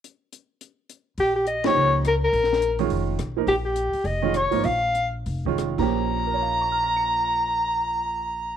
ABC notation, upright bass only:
X:1
M:4/4
L:1/8
Q:"Swing" 1/4=206
K:Bbdor
V:1 name="Upright bass" clef=bass
z8 | B,,,4 D,,4 | B,,,4 F,,,2 _C,,2 | B,,,3 z F,,,3 A,,, |
B,,,4 F,,,3 B,,,- | B,,,8- | B,,,8 |]